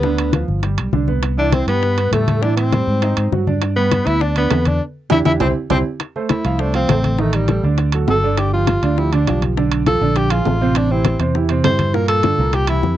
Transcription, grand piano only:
0.04 0.28 D3 medium
0.04 0.29 D4 medium
0.34 0.58 F3 medium
0.34 0.59 F4 medium
0.63 0.88 G3 medium
0.63 0.88 G4 medium
0.93 1.06 D3 medium
0.93 1.06 D4 medium
1.08 1.33 B3 medium
1.08 1.33 B4 medium
1.37 1.62 E3 medium
1.37 1.62 E4 medium
1.68 1.92 G3 medium
1.68 1.93 G4 medium
1.98 2.10 B3 medium
1.98 2.10 B4 medium
2.13 2.37 G3 medium
2.13 2.37 G4 medium
2.43 2.67 E3 medium
2.43 2.67 E4 medium
2.73 2.97 G3 medium
2.73 2.98 G4 medium
3.03 3.27 D#4 medium
3.03 3.27 D#5 medium
3.33 3.45 F#3 medium
3.33 3.45 F#4 medium
3.47 3.72 D4 medium
3.47 3.72 D5 medium
3.77 4.02 G3 medium
3.77 4.02 G4 medium
4.07 4.31 B3 medium
4.07 4.31 B4 medium
4.37 4.49 D4 medium
4.37 4.49 D5 medium
4.51 4.76 B3 medium
4.51 4.76 B4 medium
5.11 5.21 D4 medium
5.11 5.21 E4 loud
5.11 5.21 G4 medium
5.26 5.36 D4 medium
5.26 5.36 E4 medium
5.26 5.35 G4 medium
5.41 5.51 C4 medium
5.41 5.51 E4 medium
5.41 5.51 G4 loud
5.71 5.80 C4 medium
5.71 5.80 E4 medium
5.71 5.80 G4 medium
6.16 6.40 A3 medium
6.16 6.40 A4 medium
6.16 6.40 C5 medium
6.45 6.57 F3 medium
6.45 6.57 F4 medium
6.45 6.58 F5 medium
6.60 6.72 A3 medium
6.60 6.72 A4 medium
6.60 6.72 C5 medium
6.75 6.87 F3 medium
6.75 6.87 F4 medium
6.75 6.87 F5 medium
6.90 7.14 A3 medium
6.90 7.14 A4 medium
6.90 7.14 C5 medium
7.19 7.43 D#3 medium
7.19 7.43 D#4 medium
7.19 7.44 D#5 medium
7.48 7.61 G3 medium
7.48 7.61 G4 medium
7.48 7.61 A4 medium
7.64 7.88 D3 medium
7.64 7.88 D4 medium
7.64 7.88 D5 medium
7.94 8.18 F#3 medium
7.94 8.18 F#4 medium
7.94 8.18 A4 medium
8.24 8.48 D3 medium
8.24 8.48 D4 medium
8.24 8.48 D5 medium
8.53 8.77 F3 medium
8.53 8.78 F4 medium
8.53 8.78 G4 medium
8.83 8.95 D3 medium
8.83 8.95 D4 medium
8.83 8.95 D5 medium
8.98 9.10 F3 medium
8.98 9.10 F4 medium
8.98 9.10 G4 medium
9.13 9.25 D3 medium
9.13 9.25 D4 medium
9.13 9.25 D5 medium
9.27 9.52 F3 medium
9.27 9.52 F4 medium
9.27 9.52 G4 medium
9.57 9.81 D3 medium
9.57 9.82 D4 medium
9.57 9.82 D5 medium
9.87 9.99 F3 medium
9.87 9.99 F4 medium
9.87 9.99 A4 medium
10.01 10.26 D3 medium
10.01 10.26 D4 medium
10.01 10.26 D5 medium
10.31 10.56 F3 medium
10.31 10.56 F4 medium
10.31 10.56 G#4 medium
10.61 10.85 C3 medium
10.61 10.86 C4 medium
10.61 10.86 C5 medium
10.91 11.15 E3 medium
10.91 11.15 E4 medium
10.91 11.15 G4 medium
11.20 11.33 C3 medium
11.20 11.33 C4 medium
11.20 11.33 C5 medium
11.35 11.47 E3 medium
11.35 11.48 E4 medium
11.35 11.48 G4 medium
11.50 11.62 C3 medium
11.50 11.62 C4 medium
11.50 11.62 C5 medium
11.65 11.89 E3 medium
11.65 11.89 E4 medium
11.65 11.89 G4 medium
11.94 12.18 A#2 medium
11.94 12.19 A#3 medium
11.94 12.19 A#4 medium
12.23 12.36 D3 medium
12.23 12.36 D4 medium
12.23 12.37 F4 medium
12.39 12.63 A#2 medium
12.39 12.63 A#3 medium
12.39 12.64 A#4 medium
12.68 12.93 E3 medium
12.68 12.93 E4 medium
12.68 12.93 G4 medium

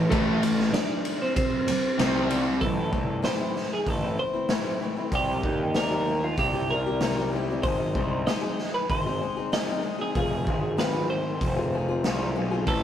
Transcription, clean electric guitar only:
0.00 0.14 A5 loud
0.10 0.70 A3 medium
0.10 0.70 A4 medium
0.73 1.17 D4 medium
0.73 1.17 D5 medium
1.22 1.35 C4 medium
1.22 1.35 C5 medium
1.36 2.26 C4 medium
1.36 2.26 C5 medium
2.61 3.20 A4 medium
3.25 3.73 C5 medium
3.73 3.88 G#4 medium
3.88 4.19 A4 medium
4.19 4.78 C5 medium
5.15 5.76 G4 medium
5.76 6.25 A#4 medium
6.24 6.40 F4 medium
6.39 6.70 G4 medium
6.71 7.29 A#4 medium
7.63 8.27 C5 medium
8.27 8.74 D#5 medium
8.74 8.90 B4 medium
8.90 9.49 C5 medium
9.53 10.01 D#5 medium
10.01 10.15 G#4 medium
10.17 10.75 G#4 medium
10.79 11.10 B4 medium
11.10 12.32 C5 medium
12.68 12.83 A4 medium

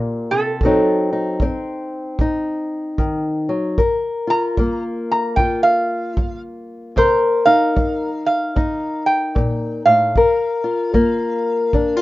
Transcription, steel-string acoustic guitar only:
0.00 0.32 A#2 medium
0.00 0.63 A#3 medium
0.00 0.59 F4 medium
0.00 0.62 G4 medium
0.31 0.62 C3 medium
0.63 1.36 D3 medium
0.63 1.41 F#3 medium
0.63 1.41 C4 medium
0.63 1.11 D#4 medium
1.13 2.20 D#4 medium
1.42 2.15 F#3 medium
1.42 3.76 C4 medium
2.20 2.94 A2 medium
2.20 3.76 D#4 medium
2.98 3.48 D#3 medium
3.49 3.79 F#3 medium
3.78 4.52 G2 medium
3.78 6.98 A#4 medium
4.27 5.38 F4 medium
4.58 5.32 G3 medium
4.58 8.09 A#3 medium
5.39 6.12 D3 medium
5.39 6.94 F4 medium
6.18 6.91 G3 medium
6.96 7.70 C3 medium
6.96 10.17 A#4 medium
7.47 8.56 D#4 medium
7.76 8.50 G3 medium
8.56 9.29 G2 medium
8.56 10.11 D#4 medium
9.35 9.84 A#2 medium
9.86 10.15 A2 medium
10.17 10.89 G2 medium
10.17 12.02 A#4 medium
10.64 11.74 F4 medium
10.93 11.67 G3 medium
10.93 12.02 A#3 medium
11.74 12.02 D3 medium
11.74 11.97 D4 medium
11.97 12.02 F4 medium

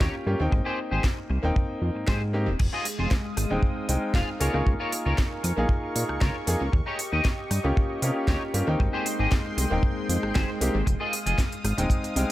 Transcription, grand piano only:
0.00 0.24 A#3 medium
0.00 0.24 C#4 medium
0.00 0.24 F4 medium
0.00 0.24 G4 medium
0.26 0.37 A#3 medium
0.26 0.37 C#4 medium
0.26 0.37 F4 medium
0.26 0.37 G4 medium
0.39 1.40 A#3 medium
0.39 1.40 C4 medium
0.39 1.41 D#4 medium
0.39 1.41 G5 medium
1.43 2.30 A#3 medium
1.43 2.30 C4 medium
1.43 2.31 D#4 medium
1.43 2.31 G5 medium
2.33 2.46 A#3 medium
2.33 2.46 C4 medium
2.33 2.46 D#4 medium
2.33 2.46 G4 medium
3.50 3.86 G#3 medium
3.50 3.86 C4 medium
3.50 3.86 D#4 medium
3.50 3.86 G5 medium
3.88 4.37 G#3 medium
3.88 4.38 C4 medium
3.88 4.38 D#4 medium
3.88 4.38 G5 medium
4.40 4.51 A#3 medium
4.40 4.51 D#4 medium
4.40 4.51 F4 medium
4.40 4.51 G#4 medium
4.53 5.54 A#3 medium
4.53 5.54 D#4 medium
4.53 5.55 F4 medium
4.53 5.55 G#4 medium
5.57 6.44 A#3 medium
5.57 6.44 D#4 medium
5.57 6.45 F4 medium
5.57 6.45 G#4 medium
6.47 6.60 A#3 medium
6.47 6.60 D#4 medium
6.47 6.60 F4 medium
6.47 6.60 G#4 loud
7.64 7.99 A#3 medium
7.64 8.00 C#4 medium
7.64 8.00 F4 medium
7.64 8.00 G4 medium
8.02 8.51 A#3 medium
8.02 8.51 C#4 medium
8.02 8.51 F4 medium
8.02 8.52 G4 medium
8.54 8.64 A#3 medium
8.54 8.64 C#4 medium
8.54 8.65 F4 medium
8.54 8.65 G4 medium
8.67 9.68 A#3 medium
8.67 9.68 C4 medium
8.67 9.68 D#4 medium
8.67 9.69 G5 medium
9.70 10.58 A#3 medium
9.70 10.58 C4 medium
9.70 10.58 D#4 medium
9.70 10.59 G5 medium
10.61 10.73 A#3 medium
10.61 10.74 C4 medium
10.61 10.74 D#4 medium
10.61 10.74 G4 loud
11.77 12.13 G#3 medium
11.77 12.13 C4 medium
11.77 12.13 D#4 medium
11.77 12.14 G5 medium
12.16 12.32 G#3 medium
12.16 12.32 C4 medium
12.16 12.32 D#4 medium
12.16 12.32 G5 medium

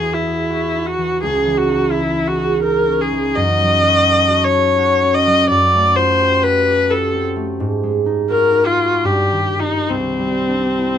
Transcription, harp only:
0.00 1.25 E2 soft
0.00 0.96 E3 soft
0.00 2.14 E4 soft
0.00 0.49 F#4 soft
0.00 0.26 G#4 soft
0.27 1.90 G#4 soft
0.50 1.24 F#4 soft
0.75 1.67 D#4 soft
0.98 1.24 E3 soft
1.23 3.40 C#2 soft
1.46 3.11 E3 soft
1.68 2.61 D#4 soft
1.91 2.37 G#4 soft
2.15 3.40 E4 soft
2.38 3.40 G#4 soft
2.63 5.53 D#4 soft
2.87 5.02 C#4 soft
3.12 3.40 E3 soft
3.37 5.50 F#2 medium
3.61 5.25 F#3 soft
3.84 4.29 F#4 soft
4.07 4.53 A4 soft
4.30 4.77 F#4 soft
4.54 6.43 A4 soft
4.79 5.53 F#4 soft
5.03 5.53 C#4 soft
5.26 5.53 F#3 soft
5.51 7.63 F#2 soft
5.75 7.35 A3 soft
5.97 6.89 F4 soft
6.20 6.66 G4 soft
6.44 7.63 A4 soft
6.67 7.63 G4 soft
6.90 7.63 F4 soft
7.14 9.10 C4 soft
7.36 7.63 A3 soft
7.60 9.09 G#2 soft
7.83 9.09 G#3 soft
8.06 8.53 D#4 soft
8.30 8.78 F#4 soft
8.54 9.59 D#4 soft
8.79 9.09 F#4 soft
9.04 9.92 G2 soft
9.32 9.93 D#3 soft
9.60 9.93 D#4 soft
9.60 9.93 F4 soft
9.89 10.98 C2 soft
10.19 10.98 G3 soft
10.49 10.98 D4 soft
10.78 10.98 E4 soft

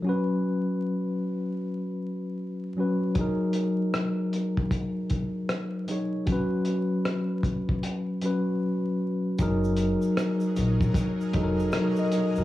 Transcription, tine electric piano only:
0.02 2.72 F#3 medium
0.02 2.73 C#4 medium
0.07 2.74 F#4 medium
0.07 2.75 B4 medium
2.77 3.13 F#3 medium
2.77 3.16 C#4 medium
2.77 3.17 F#4 soft
2.77 3.17 B4 medium
3.14 5.84 F#3 medium
3.14 5.85 D#4 medium
3.19 5.86 G#4 medium
3.19 5.87 A#4 medium
5.89 6.24 F#3 medium
5.89 6.28 D#4 soft
5.89 6.29 G#4 soft
5.89 6.29 C#5 medium
6.26 8.17 F#3 medium
6.26 8.19 C#4 medium
6.30 8.20 F#4 medium
6.30 8.21 B4 medium
8.22 9.38 F#3 soft
8.22 9.40 C#4 soft
8.22 9.40 F#4 soft
8.22 9.41 B4 medium
9.39 10.85 F#3 medium
9.39 10.86 D#4 medium
9.39 10.86 G#4 medium
9.39 10.87 A#4 loud
11.34 12.07 F#3 medium
11.34 12.07 D#4 medium
11.34 11.74 G#4 medium
11.34 11.44 A4 medium
11.43 11.74 A#4 medium
11.74 11.98 A#4 medium
11.74 11.97 C#5 medium
11.99 12.35 D#5 medium
12.38 12.44 F#4 soft
12.38 12.44 A#4 medium

